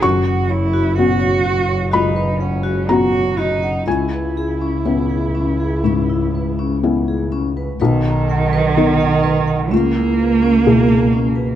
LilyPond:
<<
  \new Staff \with { instrumentName = "Vibraphone" } { \time 4/4 \key b \major \tempo 4 = 62 fis'16 fis''16 cis''16 fis'16 fis''16 cis''16 fis'16 cis''16 fis'16 b'16 fis''16 fis'16 r16 cis''16 fis'16 fis''16 | cis'16 b'16 gis'16 cis'16 b'16 gis'16 cis'16 gis'16 cis'16 e'16 b'16 cis'16 r16 gis'16 cis'16 b'16 | b'16 ais''16 fis''16 b'16 ais''16 fis''16 b'16 fis''16 cis'16 e'16 b'16 cis'16 r16 gis'16 cis'16 b'16 | }
  \new Staff \with { instrumentName = "Cello" } { \time 4/4 \key b \major fis'8 e'8 fis'4 dis'8 cis'8 fis'8 dis'8 | e'2.~ e'8 r8 | dis2 ais2 | }
  \new Staff \with { instrumentName = "Felt piano" } { \time 4/4 \key b \major << { cis'''2 b''4 ais''4 | gis''2.~ gis''8 r8 | r1 | } \\ { fis,4 <b cis' fis'>4 cis,4 <b cis' fis'>4 | cis,4 <b cis' e'>4 gis,4 <b cis' e'>4 | b,,4 <b dis' ais'>4 cis,4 <b, e' gis'>4 | } >> }
  \new Staff \with { instrumentName = "Double bass" } { \clef bass \time 4/4 \key b \major fis,,1 | cis,1 | b,,2 cis,2 | }
>>